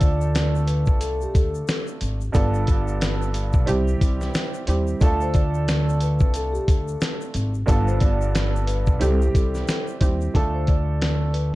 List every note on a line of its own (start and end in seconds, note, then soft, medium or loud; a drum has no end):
0.00 0.84 D2 loud
0.00 2.15 A3 medium
0.00 2.16 D4 medium
0.00 2.16 F4 medium
0.00 2.17 A4 loud
0.00 0.64 D5 medium
0.00 kick loud
0.00 closed hi-hat medium
0.00 shaker soft
0.21 shaker medium
0.35 snare loud
0.35 closed hi-hat medium
0.35 shaker medium
0.55 shaker medium
0.66 0.97 B4 medium
0.66 closed hi-hat medium
0.66 shaker medium
0.86 1.23 C2 medium
0.86 kick loud
0.86 shaker soft
1.00 1.19 A4 medium
1.00 closed hi-hat medium
1.00 shaker medium
1.21 1.34 G4 medium
1.21 shaker soft
1.34 1.60 D2 loud
1.34 1.84 A4 medium
1.34 kick medium
1.34 closed hi-hat medium
1.34 shaker medium
1.55 shaker medium
1.68 snare loud
1.68 closed hi-hat medium
1.68 shaker medium
1.87 shaker medium
2.01 2.27 G#1 loud
2.01 closed hi-hat medium
2.01 shaker medium
2.21 shaker soft
2.33 3.51 G1 loud
2.33 3.67 G2 loud
2.33 3.67 B3 medium
2.33 3.68 D4 medium
2.33 3.68 F4 medium
2.33 3.68 A4 loud
2.33 kick loud
2.33 closed hi-hat loud
2.33 shaker medium
2.54 shaker medium
2.67 kick medium
2.67 closed hi-hat medium
2.67 shaker soft
2.88 shaker medium
3.01 snare loud
3.01 closed hi-hat medium
3.01 shaker medium
3.22 shaker soft
3.34 closed hi-hat medium
3.34 shaker medium
3.53 3.64 B1 medium
3.53 kick loud
3.53 shaker soft
3.66 3.94 C2 loud
3.66 4.61 G3 medium
3.66 4.61 C4 medium
3.66 4.61 E4 medium
3.66 4.62 G4 loud
3.66 closed hi-hat medium
3.66 shaker medium
3.88 shaker soft
4.01 4.27 C2 medium
4.01 kick medium
4.01 closed hi-hat medium
4.01 shaker medium
4.21 snare soft
4.21 shaker medium
4.34 snare loud
4.34 closed hi-hat medium
4.34 shaker medium
4.54 shaker medium
4.66 4.94 D#2 loud
4.66 4.98 G3 medium
4.66 4.99 C4 medium
4.66 4.99 E4 medium
4.66 5.00 G4 medium
4.66 closed hi-hat medium
4.66 shaker medium
4.87 shaker soft
5.01 6.17 D2 loud
5.01 7.49 A3 medium
5.01 7.49 D4 loud
5.01 7.49 F4 medium
5.01 7.50 A4 loud
5.01 kick loud
5.01 closed hi-hat loud
5.01 shaker medium
5.21 5.34 C5 medium
5.21 shaker medium
5.34 5.97 D5 medium
5.34 kick loud
5.34 closed hi-hat medium
5.34 shaker soft
5.54 shaker medium
5.68 snare loud
5.68 closed hi-hat medium
5.68 shaker medium
5.89 shaker medium
6.01 6.32 B4 medium
6.01 closed hi-hat medium
6.01 shaker medium
6.19 6.57 C2 medium
6.19 kick loud
6.19 shaker soft
6.34 6.54 A4 medium
6.34 closed hi-hat medium
6.34 shaker medium
6.52 6.66 G4 medium
6.52 shaker soft
6.67 6.94 D2 medium
6.67 7.17 A4 medium
6.67 kick medium
6.67 closed hi-hat medium
6.67 shaker medium
6.88 shaker medium
7.01 snare loud
7.01 closed hi-hat medium
7.01 shaker medium
7.21 shaker medium
7.34 7.60 G#1 loud
7.34 closed hi-hat loud
7.34 shaker medium
7.54 shaker soft
7.66 8.84 G1 loud
7.66 9.00 G2 loud
7.66 9.01 B3 medium
7.66 9.01 D4 medium
7.66 9.01 F4 medium
7.66 9.01 A4 loud
7.66 kick loud
7.66 closed hi-hat medium
7.66 shaker medium
7.88 8.00 C5 medium
7.88 shaker medium
8.00 8.64 D5 medium
8.00 kick loud
8.00 closed hi-hat medium
8.00 shaker soft
8.21 shaker medium
8.35 snare loud
8.35 closed hi-hat medium
8.35 shaker medium
8.56 shaker soft
8.67 8.97 B4 medium
8.67 closed hi-hat medium
8.67 shaker medium
8.86 8.98 B1 medium
8.86 kick loud
8.86 shaker soft
8.99 9.27 C2 loud
8.99 9.94 G3 medium
8.99 9.94 C4 medium
8.99 9.95 E4 medium
8.99 9.95 G4 loud
8.99 9.19 A4 medium
8.99 closed hi-hat medium
8.99 shaker medium
9.22 9.34 G4 medium
9.22 shaker soft
9.35 9.60 C2 loud
9.35 9.85 A4 medium
9.35 kick medium
9.35 closed hi-hat medium
9.35 shaker medium
9.55 snare soft
9.55 shaker medium
9.68 snare loud
9.68 closed hi-hat medium
9.68 shaker medium
9.88 shaker medium
10.00 10.27 D#2 medium
10.00 10.32 G3 medium
10.00 10.32 C4 medium
10.00 10.33 E4 medium
10.00 10.33 G4 medium
10.00 kick medium
10.00 closed hi-hat medium
10.00 shaker medium
10.21 shaker soft
10.34 11.51 D2 loud
10.34 11.55 A3 medium
10.34 11.55 D4 medium
10.34 11.55 F4 medium
10.34 11.55 A4 loud
10.34 kick loud
10.34 closed hi-hat medium
10.54 10.67 C5 medium
10.67 11.31 D5 medium
10.67 kick medium
10.67 closed hi-hat medium
11.02 snare loud
11.02 closed hi-hat medium
11.33 11.55 B4 medium
11.33 closed hi-hat medium